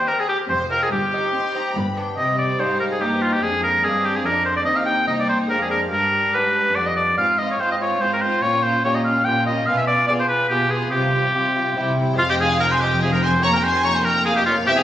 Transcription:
Already playing: C4 G4
0.07 C4 A#4
0.19 G#4
0.29 C4 G4
0.49 F1 F2 C4 C5 G#5
0.70 G#3 C4 F4 A#4
0.81 G#4
0.91 G1 G2 G4
1.13 C4 D#4
1.33 C4 C6
1.54 C4 D#4 A#5
1.75 G1 G2 B3 B5
1.97 B3 D4 G5
2.17 C3 G3 C4 D#5 G5
2.38 D5
2.59 G#2 C4 D#4 C5 F5
2.80 A#4
2.91 G#4
3.00 G2 A#3 C4 D#4 G4 D#5
3.22 F4
3.33 G4
3.42 F2 G#3 D4 G#4 F5
3.63 A#4
3.84 G2 G#3 C4 D4 G#4 F5
4.05 G4
4.15 G#4
4.25 F2 G#3 D4 A#4 D5
4.45 C5
4.56 D5
4.65 D#2 C4 D#4 D#5 G5
4.76 F5
4.86 G5
5.08 C2 A#3 C4 D#4 D#5
5.19 D5
5.29 C5
5.49 F2 G#3 C4 D4 A#4 F5
5.62 G#4
5.71 A#4
5.91 G2 G3 D4 A#4 D5
6.34 G#2 B3 D4 B4
6.75 F2 B3 D4 D5
6.86 D#5
6.96 D5
7.18 G#2 C4 F4 F5
7.38 C4 F4 D#5 F5
7.51 C#5
7.59 G#2 C4 F4 C5 F5
7.71 D#5
7.80 C4 F4 C#5 F5
8.01 G#2 C4 F4 C5 F5
8.13 A#4
8.21 C4 F4 C5 F5
8.42 A#2 C#4 F4 C#5 G5
8.63 C#4 F4 C5 G5
8.84 A#2 C#4 F4 G4 C#5 G5
8.95 D#5
9.04 C#4 F4 F5 G5
9.25 A#2 C#4 F4 G4 G5
9.46 C#4 F4 D#5 G5
9.66 B2 B3 F4 F5 G#5
9.77 E5
9.87 B3 F4 D5 G#5
10.08 B2 B3 F4 G#4 D5 G#5
10.19 C5
10.28 B3 F4 B4 G#5
10.49 B2 B3 F4 G4 G#4 G#5
10.70 B3 F4 G#4 G#5
10.91 C3 G3 F4 G4 G5
11.13 G3 F4 G5
11.34 C3 G3 F4 G4 G5
11.55 G3 F4 G5
11.76 C3 G3 E4 G4 G5
11.97 G3 E4 G5
12.13 G#3 C4 F4
12.18 F1 F2 C4 F4 C5 F5
12.28 G4 D#5 G5
12.39 G#4 F5 G#5
12.60 A#4 G5 A#5
12.71 C5 G#5 C6
12.81 G4 D#5 G5
13.01 C4 G#4 F5 G#5
13.12 A#4 G5 A#5
13.22 C5 G#5 C6
13.40 A#3 G4 C#5 A#5 C#6
13.53 A#4 G5 A#5
13.63 C5 G#5 C6
13.84 A#3 C#5 A#5 C#6
13.94 C5 G#5 C6
14.05 A#4 G5 A#5
14.25 G#4 F5 G#5
14.36 G4 D#5 G5
14.45 F4 C#5 F5
14.65 E1 E2 C4 G4 E5 G5
14.77 G#4 F5 G#5

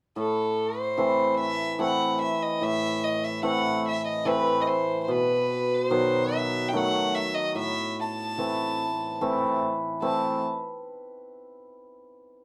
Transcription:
0.16 A2 A4
0.79 C5
0.98 E3 A3 C4
1.40 E5
1.79 E3 A3 C4 F#5
2.22 E5
2.42 D#5
2.61 A2 E5
3.04 D#5
3.24 E5
3.43 E3 A3 C4 F#5
3.88 E5
4.08 D#5
4.25 E3 A3 C4 B4
4.62 D#5
4.67 C5
5.04 C5
5.08 B2 B4
5.75 C5
5.90 B2 D#3 F#3
6.35 E5
6.69 G5
6.73 D#3 F#3 A3 F#5
7.15 E5
7.35 D#5
7.55 A2 E5
8.01 A5
8.38 E3 A3 C4
9.21 E3 A3 C4
10.02 E3 A3 C4 A5

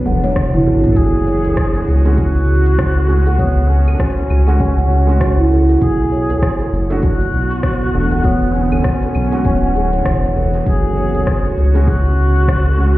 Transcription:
Already playing: E3 B3 D4 F#4 G#4
0.06 E1 F#5, high tom, djembe slap, djembe bass, shaker
0.24 C#5, closed hi-hat, high tom, djembe slap, shaker
0.36 kick, cross-stick, closed hi-hat, mid tom, shaker
0.54 E4, closed hi-hat, mid tom, shaker
0.66 G#1 F#4, djembe slap, djembe bass, shaker
0.84 B1, closed hi-hat, mid tom, shaker
0.91 A4
0.96 F#1 C#4 F#4 G#4, kick, closed hi-hat, shaker
1.16 djembe tone
1.27 C#5, djembe slap, shaker
1.45 C#5, closed hi-hat, djembe bass, shaker
1.57 kick, cross-stick, closed hi-hat, shaker
1.75 closed hi-hat, djembe tone, shaker
1.88 C#2, djembe slap, shaker
2.05 G#3 C#4 F#4 G#4, closed hi-hat, djembe slap, shaker
2.18 F#4, kick, closed hi-hat, shaker
2.36 closed hi-hat
2.48 shaker
2.66 closed hi-hat, djembe slap, shaker
2.78 kick, cross-stick, closed hi-hat, shaker
2.97 djembe tone, shaker
3.08 G#3 C#4 F#4, shaker
3.27 F#5, closed hi-hat, djembe bass, shaker
3.39 B3 C#5, kick, closed hi-hat, shaker
3.57 djembe tone
3.69 C#4, djembe slap, shaker
3.88 closed hi-hat, djembe bass, claves, shaker
3.94 D4
3.99 C#4 F#4, kick, cross-stick, closed hi-hat, shaker
4.18 closed hi-hat, djembe tone, shaker
4.30 C#2, djembe slap, claves, shaker
4.47 G#3 C#4 F#4 F#5, closed hi-hat, djembe slap, shaker
4.60 C#5, kick, closed hi-hat, shaker
4.78 F#5, closed hi-hat
4.90 F#4, shaker
5.07 G#3 C#4 F#5, closed hi-hat, djembe slap, shaker
5.11 F#4
5.21 F#4, kick, cross-stick, closed hi-hat, shaker
5.39 E4, shaker
5.51 djembe bass, shaker
5.69 closed hi-hat, djembe slap, shaker
5.82 B1 B2 F#4 G#4, kick, closed hi-hat, shaker
6.00 djembe tone
6.12 C#5, djembe slap, shaker
6.30 B3 C#5, closed hi-hat, djembe bass, shaker
6.42 kick, cross-stick, closed hi-hat, shaker
6.48 D3
6.60 closed hi-hat, djembe tone, shaker
6.73 F#1, djembe slap, shaker
6.90 A3 D4 F#4 A4, closed hi-hat, djembe slap
7.03 F#4, kick, closed hi-hat, shaker
7.21 closed hi-hat
7.33 B1, shaker
7.51 closed hi-hat, djembe slap, shaker
7.63 kick, cross-stick, closed hi-hat, shaker
7.81 djembe tone, shaker
7.93 E1 A3 D4 F#4, shaker
8.11 F#5, closed hi-hat, djembe bass, shaker
8.24 E3 B3 C#5, kick, closed hi-hat, shaker
8.42 closed hi-hat, djembe tone
8.54 C#4, djembe slap, shaker
8.60 B3 G#4
8.71 C#4, closed hi-hat, djembe bass, claves, shaker
8.84 C#4 F#4, kick, cross-stick, closed hi-hat, shaker
9.03 closed hi-hat, djembe tone, shaker
9.15 B1, djembe slap, claves, shaker
9.24 F#4
9.32 G#3 C#4 F#4 F#5, closed hi-hat, djembe slap, shaker
9.45 D1 C#5, kick, closed hi-hat, shaker
9.63 F#5, closed hi-hat, shaker
9.75 G#4, shaker
9.93 C#5, closed hi-hat, djembe slap, shaker
10.06 E1, kick, cross-stick, closed hi-hat, shaker
10.24 C#5, closed hi-hat, shaker
10.36 C#5, djembe bass, shaker
10.54 closed hi-hat, djembe slap, shaker
10.66 F#1 C#4 F#4 G#4, kick, closed hi-hat, shaker
10.84 djembe tone
10.97 C#5, djembe slap, shaker
11.14 C#5, closed hi-hat, djembe bass, shaker
11.27 kick, cross-stick, closed hi-hat, shaker
11.45 closed hi-hat, djembe tone, shaker
11.57 C#2, djembe slap, shaker
11.74 G#3 C#4 F#4 G#4, closed hi-hat, djembe slap, shaker
11.82 G#4
11.87 F#4, kick, closed hi-hat, shaker
12.06 closed hi-hat
12.18 shaker
12.36 closed hi-hat, djembe slap, shaker
12.48 kick, cross-stick, closed hi-hat, shaker
12.66 djembe tone, shaker
12.77 G#3 C#4 F#4, shaker

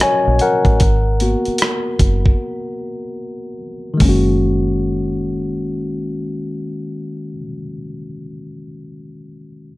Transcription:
Already playing: F#3 C#4 F#4 A#4 D#5 F5
0.00 C#5 G#5, cross-stick, closed hi-hat
0.27 A#1
0.39 A#4 F#5, closed hi-hat
0.65 A1, kick, closed hi-hat
0.80 G#1, kick, closed hi-hat
1.20 A#3 B3 F#4, closed hi-hat
1.45 muted fingered electric bass stroke, closed hi-hat
1.58 cross-stick, closed hi-hat
1.99 F#1, kick, closed hi-hat
2.26 kick
3.94 D#3 G#3
4.00 F#1 A#3, kick, open hi-hat
4.05 C#4
4.09 F#4

